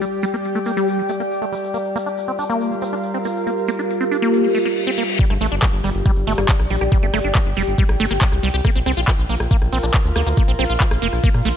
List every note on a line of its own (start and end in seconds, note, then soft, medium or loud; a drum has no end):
0.00 5.24 G3 medium
0.00 0.05 G3 medium
0.00 3.06 G4 medium
0.00 5.24 G4 medium
0.00 2.31 D5 medium
0.00 2.47 G5 medium
0.00 shaker medium
0.12 shaker soft
0.23 0.25 G3 loud
0.23 shaker medium
0.33 0.36 A#3 medium
0.33 shaker soft
0.44 shaker medium
0.55 0.59 A3 medium
0.55 shaker soft
0.66 0.72 A#3 medium
0.66 shaker medium
0.77 1.00 G3 loud
0.77 shaker soft
0.88 shaker medium
0.98 1.02 F3 loud
0.98 shaker soft
1.09 1.12 A3 medium
1.09 shaker loud
1.20 1.22 A#3 medium
1.20 shaker soft
1.31 shaker soft
1.41 1.45 A3 medium
1.41 shaker soft
1.52 1.55 G3 medium
1.52 shaker medium
1.64 shaker soft
1.74 1.78 A#3 medium
1.74 6.22 F4 medium
1.74 shaker medium
1.84 shaker soft
1.93 1.98 A#3 loud
1.93 5.98 F5 medium
1.93 shaker medium
2.06 2.09 D4 medium
2.06 6.08 A#4 medium
2.06 shaker soft
2.17 shaker medium
2.28 2.32 C4 medium
2.28 shaker soft
2.39 2.45 D4 medium
2.39 shaker medium
2.50 2.73 A#3 loud
2.50 shaker soft
2.61 shaker medium
2.71 2.75 A3 loud
2.71 shaker soft
2.82 2.84 C4 medium
2.82 shaker medium
2.93 2.95 D4 medium
2.93 shaker soft
3.03 shaker medium
3.14 3.18 C4 medium
3.14 shaker soft
3.25 3.27 A#3 medium
3.25 shaker medium
3.35 shaker soft
3.47 3.51 A#3 medium
3.47 shaker medium
3.57 shaker soft
3.68 3.71 A#3 loud
3.68 shaker medium
3.79 3.81 D4 medium
3.79 shaker soft
3.90 shaker medium
4.01 4.04 C4 medium
4.01 shaker soft
4.11 4.17 D4 medium
4.11 shaker medium
4.22 4.45 A#3 loud
4.22 shaker soft
4.33 reverse cymbal medium
4.33 shaker medium
4.44 4.48 A3 loud
4.44 shaker soft
4.55 4.58 A3 medium
4.55 shaker medium
4.65 4.68 A#3 medium
4.65 shaker soft
4.76 shaker soft
4.87 4.91 C4 loud
4.87 shaker soft
4.97 5.04 A#3 medium
4.97 shaker loud
5.10 shaker soft
5.19 5.25 G3 loud
5.19 9.23 G4 medium
5.19 kick loud
5.19 closed hi-hat medium
5.19 shaker medium
5.30 5.37 G1 medium
5.30 5.34 A3 medium
5.30 cross-stick soft
5.30 closed hi-hat soft
5.30 shaker soft
5.35 9.62 G5 medium
5.41 5.48 A1 loud
5.41 5.47 A3 loud
5.41 open hi-hat loud
5.41 shaker loud
5.52 5.59 G1 medium
5.52 5.56 D4 medium
5.52 closed hi-hat soft
5.52 shaker soft
5.62 5.66 G3 medium
5.62 kick loud
5.62 cross-stick medium
5.62 clap loud
5.62 closed hi-hat medium
5.62 shaker medium
5.66 9.23 D5 medium
5.73 5.80 G1 medium
5.73 closed hi-hat soft
5.73 shaker soft
5.84 5.91 G1 loud
5.84 5.90 G3 medium
5.84 cross-stick soft
5.84 open hi-hat medium
5.84 shaker loud
5.95 6.02 G1 loud
5.95 closed hi-hat soft
5.95 shaker soft
6.06 6.11 G3 loud
6.06 kick loud
6.06 cross-stick soft
6.06 closed hi-hat medium
6.06 shaker medium
6.16 6.24 G1 medium
6.16 closed hi-hat soft
6.16 shaker soft
6.27 6.34 G1 loud
6.27 6.33 A3 loud
6.27 open hi-hat loud
6.27 shaker loud
6.38 6.45 G1 medium
6.38 6.40 A#3 medium
6.38 cross-stick medium
6.38 closed hi-hat soft
6.38 shaker soft
6.49 kick loud
6.49 clap loud
6.49 closed hi-hat medium
6.49 shaker soft
6.59 6.67 A#1 medium
6.59 cross-stick soft
6.59 closed hi-hat soft
6.59 shaker soft
6.70 6.78 A#1 loud
6.70 6.76 G3 medium
6.70 open hi-hat loud
6.70 shaker medium
6.81 6.88 A#1 medium
6.81 6.84 G4 medium
6.81 cross-stick soft
6.81 closed hi-hat soft
6.81 shaker soft
6.92 6.98 G3 loud
6.92 kick loud
6.92 closed hi-hat medium
6.92 shaker medium
7.03 7.10 G1 medium
7.03 7.07 A3 medium
7.03 closed hi-hat soft
7.03 shaker soft
7.14 7.21 G1 loud
7.14 7.19 A3 loud
7.14 cross-stick medium
7.14 open hi-hat loud
7.14 shaker loud
7.24 7.32 G1 medium
7.24 7.28 D4 medium
7.24 shaker soft
7.35 7.39 G3 medium
7.35 kick loud
7.35 cross-stick soft
7.35 clap loud
7.35 closed hi-hat medium
7.35 shaker medium
7.46 7.53 G1 medium
7.46 closed hi-hat soft
7.46 shaker soft
7.56 7.64 F1 loud
7.56 7.63 G3 medium
7.56 open hi-hat medium
7.56 shaker medium
7.68 7.75 G1 loud
7.68 closed hi-hat soft
7.68 shaker soft
7.78 7.84 G3 loud
7.78 kick loud
7.78 closed hi-hat medium
7.78 shaker medium
7.89 7.96 A1 medium
7.89 cross-stick medium
7.89 closed hi-hat soft
7.89 shaker soft
8.00 8.07 G1 loud
8.00 8.06 A3 loud
8.00 open hi-hat loud
8.00 shaker medium
8.10 8.18 G1 medium
8.10 8.13 A#3 medium
8.10 cross-stick soft
8.10 closed hi-hat soft
8.10 shaker soft
8.21 kick loud
8.21 clap loud
8.21 closed hi-hat medium
8.21 shaker medium
8.32 8.39 C2 medium
8.32 cross-stick soft
8.32 closed hi-hat soft
8.32 shaker soft
8.43 8.50 C2 loud
8.43 8.49 G3 medium
8.43 open hi-hat loud
8.43 shaker loud
8.54 8.61 C2 medium
8.54 8.56 G4 medium
8.54 closed hi-hat soft
8.54 shaker soft
8.65 8.70 A#3 loud
8.65 11.57 F4 medium
8.65 kick loud
8.65 cross-stick medium
8.65 closed hi-hat medium
8.65 shaker medium
8.75 8.83 A#1 medium
8.75 8.79 C4 medium
8.75 closed hi-hat soft
8.75 shaker soft
8.86 8.93 C2 loud
8.86 8.92 C4 loud
8.86 cross-stick soft
8.86 open hi-hat loud
8.86 shaker loud
8.96 9.04 A#1 medium
8.96 9.01 F4 medium
8.96 11.57 A#4 medium
8.96 closed hi-hat soft
8.96 shaker soft
9.08 9.12 A#3 medium
9.08 kick loud
9.08 cross-stick soft
9.08 clap loud
9.08 closed hi-hat medium
9.08 shaker medium
9.19 9.26 A#1 medium
9.19 closed hi-hat soft
9.19 shaker soft
9.29 9.37 A#1 loud
9.29 9.35 A#3 medium
9.29 open hi-hat loud
9.29 shaker loud
9.40 9.47 A#1 loud
9.40 cross-stick medium
9.40 closed hi-hat soft
9.40 shaker soft
9.51 9.57 A#3 loud
9.51 kick loud
9.51 closed hi-hat medium
9.51 shaker medium
9.62 9.69 A#1 medium
9.62 cross-stick soft
9.62 closed hi-hat soft
9.62 shaker soft
9.67 11.57 F5 medium
9.73 9.80 A#1 loud
9.73 9.78 C4 loud
9.73 open hi-hat loud
9.73 shaker loud
9.83 9.91 A#1 medium
9.83 9.86 D4 medium
9.83 cross-stick soft
9.83 closed hi-hat soft
9.83 shaker soft
9.94 kick loud
9.94 clap loud
9.94 closed hi-hat medium
9.94 shaker soft
10.05 10.12 D2 medium
10.05 closed hi-hat soft
10.05 shaker soft
10.16 10.23 D2 loud
10.16 10.22 A#3 medium
10.16 cross-stick medium
10.16 open hi-hat loud
10.16 shaker loud
10.27 10.34 D2 medium
10.27 10.29 A#3 medium
10.27 closed hi-hat soft
10.27 shaker soft
10.37 10.43 A#3 loud
10.37 kick loud
10.37 cross-stick soft
10.37 closed hi-hat medium
10.37 shaker medium
10.48 10.55 A#1 medium
10.48 10.52 C4 medium
10.48 closed hi-hat soft
10.48 shaker soft
10.59 10.66 A#1 loud
10.59 10.65 C4 loud
10.59 cross-stick soft
10.59 open hi-hat loud
10.59 shaker loud
10.70 10.77 A#1 medium
10.70 10.74 F4 medium
10.70 closed hi-hat soft
10.70 shaker soft
10.80 10.84 A#3 medium
10.80 kick loud
10.80 clap loud
10.80 closed hi-hat medium
10.80 shaker medium
10.91 10.98 A#1 medium
10.91 cross-stick medium
10.91 closed hi-hat soft
10.91 shaker soft
11.02 11.09 F1 loud
11.02 11.08 A#3 medium
11.02 open hi-hat loud
11.02 shaker loud
11.13 11.20 A#1 loud
11.13 cross-stick soft
11.13 closed hi-hat soft
11.13 shaker soft
11.24 11.29 A#3 loud
11.24 kick loud
11.24 closed hi-hat medium
11.24 shaker medium
11.33 11.42 A#2 medium
11.33 cross-stick soft
11.33 closed hi-hat soft
11.33 shaker soft
11.45 11.52 A#1 loud
11.45 11.49 A3 medium
11.45 open hi-hat loud
11.45 shaker medium